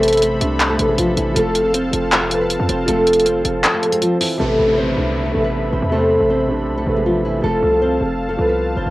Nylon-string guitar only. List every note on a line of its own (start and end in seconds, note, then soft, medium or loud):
0.00 0.20 A3 medium
0.00 0.20 A4 loud
0.22 0.67 C4 medium
0.22 0.67 C5 medium
0.70 0.86 A3 medium
0.70 0.85 A4 medium
0.89 0.97 G#3 medium
0.89 0.96 G#4 medium
0.98 1.14 F3 medium
0.98 1.14 F4 medium
1.17 1.33 E3 medium
1.17 1.33 E4 medium
1.36 1.72 A3 medium
1.36 1.72 A4 loud
1.74 2.19 C4 medium
1.74 2.19 C5 medium
2.21 2.37 A3 medium
2.21 2.37 A4 medium
2.41 2.68 B3 medium
2.41 2.67 B4 medium
2.69 2.85 C4 medium
2.69 2.85 C5 medium
2.89 3.24 A3 medium
2.89 3.24 A4 loud
3.26 3.71 C4 medium
3.26 3.71 C5 medium
3.73 3.89 A3 medium
3.73 3.89 A4 medium
3.92 4.01 G#3 medium
3.92 4.00 G#4 medium
4.02 4.18 F3 medium
4.02 4.17 F4 medium
4.21 4.37 E3 medium
4.21 4.36 E4 medium
4.40 4.76 A3 medium
4.40 4.76 A4 loud
4.78 5.23 C4 medium
4.78 5.22 C5 medium
5.25 5.41 A3 medium
5.25 5.41 A4 medium
5.44 5.71 B3 medium
5.44 5.71 B4 medium
5.73 5.89 C4 medium
5.73 5.88 C5 medium
5.92 6.28 A3 medium
5.92 6.28 A4 loud
6.30 6.75 C4 medium
6.30 6.74 C5 medium
6.77 6.93 A3 medium
6.77 6.93 A4 medium
6.96 7.04 G#3 medium
6.96 7.04 G#4 medium
7.06 7.22 F3 medium
7.06 7.21 F4 medium
7.25 7.41 E3 medium
7.25 7.40 E4 medium
7.44 7.80 A3 medium
7.44 7.79 A4 loud
7.82 8.27 C4 medium
7.82 8.26 C5 medium
8.29 8.45 A3 medium
8.29 8.44 A4 medium
8.48 8.75 B3 medium
8.48 8.75 B4 medium
8.77 8.90 C4 medium
8.77 8.90 C5 medium